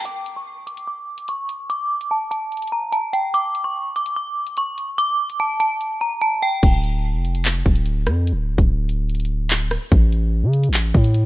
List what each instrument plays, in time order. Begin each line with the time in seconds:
0.05 synth bell D6, closed hi-hat
0.26 closed hi-hat
0.36 synth bell C#6
0.67 synth bell D6, closed hi-hat
0.77 closed hi-hat
0.87 synth bell D6
1.18 closed hi-hat
1.28 synth bell C#6, closed hi-hat
1.49 closed hi-hat
1.70 synth bell D6, closed hi-hat
2.01 closed hi-hat
2.11 synth bell A5
2.31 synth bell A5, closed hi-hat
2.52 closed hi-hat
2.57 closed hi-hat
2.62 closed hi-hat
2.67 closed hi-hat
2.72 synth bell A#5
2.92 synth bell A5, closed hi-hat
3.13 synth bell G5, closed hi-hat
3.34 synth bell D6, closed hi-hat
3.55 closed hi-hat
3.64 synth bell C#6
3.96 synth bell D6, closed hi-hat
4.06 closed hi-hat
4.16 synth bell D6
4.47 closed hi-hat
4.57 synth bell C#6, closed hi-hat
4.78 closed hi-hat
4.98 synth bell D6, closed hi-hat
5.30 closed hi-hat
5.40 synth bell A5
5.60 synth bell A5, closed hi-hat
5.81 closed hi-hat
6.01 synth bell A#5
6.22 synth bell A5
6.42 synth bell G5
6.63 808-style bass D1, kick, closed hi-hat, crash
6.84 closed hi-hat
7.14 808-style bass F1
7.25 closed hi-hat
7.35 closed hi-hat
7.45 clap
7.66 808-style bass D1, kick
7.76 closed hi-hat
7.86 closed hi-hat
8.07 808-style bass F2, cross-stick, closed hi-hat
8.27 closed hi-hat
8.32 808-style bass D1
8.58 808-style bass D1, kick, closed hi-hat
8.89 closed hi-hat
9.10 closed hi-hat
9.15 closed hi-hat
9.20 closed hi-hat
9.25 closed hi-hat
9.50 clap, closed hi-hat
9.71 cross-stick, open hi-hat
9.92 808-style bass A1, kick, closed hi-hat
10.12 closed hi-hat
10.43 808-style bass C#3
10.53 closed hi-hat
10.63 closed hi-hat
10.69 808-style bass A1
10.74 clap
10.94 808-style bass A2, kick
11.04 closed hi-hat
11.14 closed hi-hat